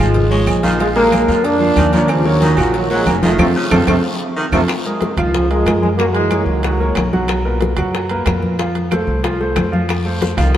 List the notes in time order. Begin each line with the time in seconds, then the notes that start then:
Already playing: F3
0.00 G#1 F3 G#3 F4 F5, high conga, low conga
0.14 cowbell, high conga, low conga, long guiro
0.30 G#3 G#4 C#5, high conga, low agogo
0.47 A#1, cowbell, high conga, low timbale, low agogo, short guiro, claves
0.63 D#3 F3 G#3 F4 F5, cowbell, high conga, short guiro
0.80 F3 G#3 F4 F5, cowbell, high conga, low agogo, long guiro
0.95 D3 F#3 G#3 A#3 G#4 A#4, high conga, low agogo
1.12 cowbell, high conga, low timbale, low agogo, short guiro, claves
1.28 F2 F3 F4 F5, high conga, short guiro
1.44 A#3 D4, cowbell, high conga, low agogo, long guiro
1.60 F3 F4 F5, high conga
1.76 D#2 D#3, cowbell, high conga, low timbale, low agogo, short guiro, claves
1.93 F3 A#3 D4 A#4 C#5, cowbell, high conga, low agogo, short guiro
2.08 C#3 F3, cowbell, high conga, low agogo, long guiro, claves
2.25 D#3 F#3 A#3 A#4 C#5, high conga
2.41 D#3, cowbell, high conga, low timbale, low agogo, short guiro
2.57 A#1 C#3 F3 F#3 F#4 F#5, high conga, low conga, low agogo, short guiro, claves
2.74 D#3 F#3, cowbell, high conga, long guiro
2.90 F3 F#3 G#3 A#3 A#4 C#5, high conga, low agogo
3.06 F1 F#3 A#3, cowbell, high conga, low timbale, low agogo, short guiro, claves
3.22 D#3 F3 A3 F4 F5, cowbell, high conga, short guiro
3.38 F2 C3 F3 A3 C4 F4 A4, cowbell, high conga, high timbale, long guiro, claves
3.56 C#3
3.71 F2 C3 F3 A3 C4 F4 A4, cowbell, high conga, high timbale, long guiro, claves
3.87 F2 C3 F3 A3 C4 F4 A4, cowbell, high conga, high timbale, long guiro, claves
4.37 D#3
4.52 F2 C3 F3 A3 C4 F4 A4, cowbell, high conga, high timbale, long guiro, claves
4.68 high bongo, high timbale, claves
4.85 G#3 G#4 A#4, high conga
5.01 high bongo, high conga, high timbale, low timbale
5.17 C#2 C3 D#3 F3 F4 F5, high conga, low conga, high timbale, claves
5.34 C#3 F3, high bongo, high conga, low conga
5.50 F3 G#3 G#4 A#4, high conga, high timbale
5.66 F#2 G#3 G#4 A#4, high bongo, low bongo, high conga, high timbale, low timbale, claves
5.83 F3 G#3, high conga
5.98 F#3 A#3 F#4 F#5, high bongo, high conga, high timbale
6.14 E3 G#3, high bongo, high conga, high timbale
6.31 A#3 A#4 C#5, high bongo, high conga, high timbale, low timbale, claves
6.46 C#2 D#3 F#3, high conga
6.63 F#3 F#4 F#5, high bongo, high conga, high timbale
6.80 A#3 A#4 C#5, high bongo, high conga
6.95 B1, high bongo, low bongo, high conga, high timbale, low timbale, claves
7.13 F#3 F#4 F#5, high bongo, high conga
7.28 high bongo, high conga, high timbale, claves
7.45 A#2 A#4 B4, high conga
7.61 high bongo, high conga, high timbale, low timbale
7.77 F#2 F#3 F#4 F#5, high conga, low conga, high timbale, claves
7.95 high bongo, high conga
8.10 A#3 A#4 B4, high conga, high timbale
8.26 F2 A#2 A#4 B4, high bongo, low bongo, high conga, high timbale, low timbale, claves
8.42 high conga
8.59 F3 F4 F5, high bongo, high conga, high timbale
8.75 high bongo, high conga, high timbale
8.91 A3 A4 C5, high bongo, high conga, high timbale, low timbale, claves
9.07 C2, high conga
9.23 F3 F4 F5, high bongo, high timbale
9.40 A3 A4 C5, high bongo, high conga
9.56 F2, high bongo, low bongo, high conga, high timbale, low timbale, claves
9.72 F3 F4 F5, high bongo, high conga
9.89 high bongo, high conga, high timbale, long guiro, claves
10.05 A3 A4 C5, high conga
10.22 high bongo, high conga, high timbale, low timbale, short guiro
10.37 C2 C3 D#3 F3 F4 F5, high conga, low conga, high timbale, short guiro, claves
10.54 F3